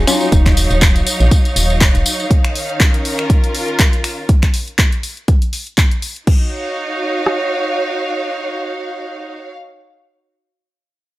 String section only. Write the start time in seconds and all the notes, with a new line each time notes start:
Already playing: F#3 D#4 C#5 F5
2.31 D#3
2.55 C#4
2.91 A#4
3.21 F4
6.27 D#4
6.35 F#4
6.43 C#5
6.50 F5